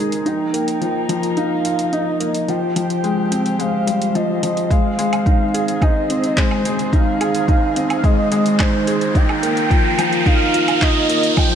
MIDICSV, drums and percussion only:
0, 0, Header, 1, 2, 480
1, 0, Start_track
1, 0, Tempo, 555556
1, 227, Time_signature, 4, 2, 24, 8
1, 9979, End_track
2, 0, Start_track
2, 0, Title_t, "Drums"
2, 106, Note_on_c, 9, 42, 40
2, 192, Note_off_c, 9, 42, 0
2, 225, Note_on_c, 9, 42, 30
2, 312, Note_off_c, 9, 42, 0
2, 467, Note_on_c, 9, 42, 69
2, 553, Note_off_c, 9, 42, 0
2, 586, Note_on_c, 9, 42, 44
2, 673, Note_off_c, 9, 42, 0
2, 705, Note_on_c, 9, 42, 27
2, 792, Note_off_c, 9, 42, 0
2, 944, Note_on_c, 9, 42, 74
2, 1031, Note_off_c, 9, 42, 0
2, 1065, Note_on_c, 9, 42, 40
2, 1152, Note_off_c, 9, 42, 0
2, 1183, Note_on_c, 9, 42, 28
2, 1269, Note_off_c, 9, 42, 0
2, 1425, Note_on_c, 9, 42, 72
2, 1511, Note_off_c, 9, 42, 0
2, 1545, Note_on_c, 9, 42, 40
2, 1632, Note_off_c, 9, 42, 0
2, 1666, Note_on_c, 9, 42, 30
2, 1752, Note_off_c, 9, 42, 0
2, 1905, Note_on_c, 9, 42, 68
2, 1992, Note_off_c, 9, 42, 0
2, 2026, Note_on_c, 9, 42, 38
2, 2112, Note_off_c, 9, 42, 0
2, 2147, Note_on_c, 9, 42, 30
2, 2234, Note_off_c, 9, 42, 0
2, 2386, Note_on_c, 9, 42, 69
2, 2473, Note_off_c, 9, 42, 0
2, 2507, Note_on_c, 9, 42, 42
2, 2594, Note_off_c, 9, 42, 0
2, 2626, Note_on_c, 9, 42, 28
2, 2713, Note_off_c, 9, 42, 0
2, 2868, Note_on_c, 9, 42, 74
2, 2954, Note_off_c, 9, 42, 0
2, 2987, Note_on_c, 9, 42, 39
2, 3074, Note_off_c, 9, 42, 0
2, 3108, Note_on_c, 9, 42, 29
2, 3194, Note_off_c, 9, 42, 0
2, 3348, Note_on_c, 9, 42, 69
2, 3434, Note_off_c, 9, 42, 0
2, 3470, Note_on_c, 9, 42, 38
2, 3556, Note_off_c, 9, 42, 0
2, 3588, Note_on_c, 9, 42, 30
2, 3674, Note_off_c, 9, 42, 0
2, 3828, Note_on_c, 9, 42, 71
2, 3915, Note_off_c, 9, 42, 0
2, 3949, Note_on_c, 9, 42, 39
2, 4035, Note_off_c, 9, 42, 0
2, 4065, Note_on_c, 9, 36, 91
2, 4070, Note_on_c, 9, 42, 32
2, 4152, Note_off_c, 9, 36, 0
2, 4156, Note_off_c, 9, 42, 0
2, 4310, Note_on_c, 9, 42, 68
2, 4396, Note_off_c, 9, 42, 0
2, 4430, Note_on_c, 9, 42, 43
2, 4430, Note_on_c, 9, 77, 64
2, 4517, Note_off_c, 9, 42, 0
2, 4517, Note_off_c, 9, 77, 0
2, 4546, Note_on_c, 9, 36, 100
2, 4550, Note_on_c, 9, 42, 27
2, 4632, Note_off_c, 9, 36, 0
2, 4636, Note_off_c, 9, 42, 0
2, 4791, Note_on_c, 9, 42, 73
2, 4877, Note_off_c, 9, 42, 0
2, 4910, Note_on_c, 9, 42, 38
2, 4997, Note_off_c, 9, 42, 0
2, 5025, Note_on_c, 9, 36, 105
2, 5029, Note_on_c, 9, 42, 30
2, 5029, Note_on_c, 9, 77, 58
2, 5112, Note_off_c, 9, 36, 0
2, 5116, Note_off_c, 9, 42, 0
2, 5116, Note_off_c, 9, 77, 0
2, 5270, Note_on_c, 9, 42, 71
2, 5356, Note_off_c, 9, 42, 0
2, 5388, Note_on_c, 9, 42, 41
2, 5474, Note_off_c, 9, 42, 0
2, 5506, Note_on_c, 9, 36, 99
2, 5508, Note_on_c, 9, 39, 66
2, 5508, Note_on_c, 9, 42, 31
2, 5592, Note_off_c, 9, 36, 0
2, 5594, Note_off_c, 9, 39, 0
2, 5594, Note_off_c, 9, 42, 0
2, 5627, Note_on_c, 9, 77, 61
2, 5714, Note_off_c, 9, 77, 0
2, 5749, Note_on_c, 9, 42, 66
2, 5835, Note_off_c, 9, 42, 0
2, 5868, Note_on_c, 9, 42, 41
2, 5955, Note_off_c, 9, 42, 0
2, 5985, Note_on_c, 9, 36, 95
2, 5990, Note_on_c, 9, 42, 28
2, 6072, Note_off_c, 9, 36, 0
2, 6076, Note_off_c, 9, 42, 0
2, 6228, Note_on_c, 9, 42, 69
2, 6228, Note_on_c, 9, 77, 62
2, 6315, Note_off_c, 9, 42, 0
2, 6315, Note_off_c, 9, 77, 0
2, 6347, Note_on_c, 9, 42, 44
2, 6433, Note_off_c, 9, 42, 0
2, 6464, Note_on_c, 9, 36, 96
2, 6468, Note_on_c, 9, 42, 29
2, 6551, Note_off_c, 9, 36, 0
2, 6554, Note_off_c, 9, 42, 0
2, 6707, Note_on_c, 9, 42, 71
2, 6794, Note_off_c, 9, 42, 0
2, 6827, Note_on_c, 9, 42, 37
2, 6827, Note_on_c, 9, 77, 60
2, 6914, Note_off_c, 9, 42, 0
2, 6914, Note_off_c, 9, 77, 0
2, 6944, Note_on_c, 9, 36, 97
2, 6946, Note_on_c, 9, 42, 28
2, 7031, Note_off_c, 9, 36, 0
2, 7033, Note_off_c, 9, 42, 0
2, 7186, Note_on_c, 9, 42, 68
2, 7272, Note_off_c, 9, 42, 0
2, 7307, Note_on_c, 9, 42, 39
2, 7393, Note_off_c, 9, 42, 0
2, 7425, Note_on_c, 9, 36, 96
2, 7425, Note_on_c, 9, 39, 68
2, 7425, Note_on_c, 9, 42, 29
2, 7425, Note_on_c, 9, 77, 64
2, 7511, Note_off_c, 9, 36, 0
2, 7512, Note_off_c, 9, 39, 0
2, 7512, Note_off_c, 9, 42, 0
2, 7512, Note_off_c, 9, 77, 0
2, 7667, Note_on_c, 9, 42, 68
2, 7753, Note_off_c, 9, 42, 0
2, 7788, Note_on_c, 9, 42, 42
2, 7874, Note_off_c, 9, 42, 0
2, 7905, Note_on_c, 9, 36, 95
2, 7907, Note_on_c, 9, 42, 31
2, 7991, Note_off_c, 9, 36, 0
2, 7994, Note_off_c, 9, 42, 0
2, 8028, Note_on_c, 9, 77, 67
2, 8115, Note_off_c, 9, 77, 0
2, 8149, Note_on_c, 9, 42, 71
2, 8235, Note_off_c, 9, 42, 0
2, 8268, Note_on_c, 9, 42, 42
2, 8355, Note_off_c, 9, 42, 0
2, 8385, Note_on_c, 9, 36, 97
2, 8390, Note_on_c, 9, 42, 27
2, 8472, Note_off_c, 9, 36, 0
2, 8476, Note_off_c, 9, 42, 0
2, 8628, Note_on_c, 9, 42, 69
2, 8628, Note_on_c, 9, 77, 70
2, 8715, Note_off_c, 9, 42, 0
2, 8715, Note_off_c, 9, 77, 0
2, 8749, Note_on_c, 9, 42, 35
2, 8836, Note_off_c, 9, 42, 0
2, 8865, Note_on_c, 9, 36, 101
2, 8868, Note_on_c, 9, 42, 28
2, 8951, Note_off_c, 9, 36, 0
2, 8954, Note_off_c, 9, 42, 0
2, 9108, Note_on_c, 9, 42, 71
2, 9194, Note_off_c, 9, 42, 0
2, 9228, Note_on_c, 9, 42, 37
2, 9228, Note_on_c, 9, 77, 60
2, 9314, Note_off_c, 9, 42, 0
2, 9314, Note_off_c, 9, 77, 0
2, 9344, Note_on_c, 9, 36, 95
2, 9347, Note_on_c, 9, 39, 71
2, 9347, Note_on_c, 9, 42, 32
2, 9431, Note_off_c, 9, 36, 0
2, 9433, Note_off_c, 9, 39, 0
2, 9433, Note_off_c, 9, 42, 0
2, 9586, Note_on_c, 9, 42, 69
2, 9672, Note_off_c, 9, 42, 0
2, 9706, Note_on_c, 9, 42, 41
2, 9793, Note_off_c, 9, 42, 0
2, 9825, Note_on_c, 9, 36, 94
2, 9825, Note_on_c, 9, 42, 29
2, 9825, Note_on_c, 9, 77, 72
2, 9911, Note_off_c, 9, 36, 0
2, 9911, Note_off_c, 9, 42, 0
2, 9911, Note_off_c, 9, 77, 0
2, 9979, End_track
0, 0, End_of_file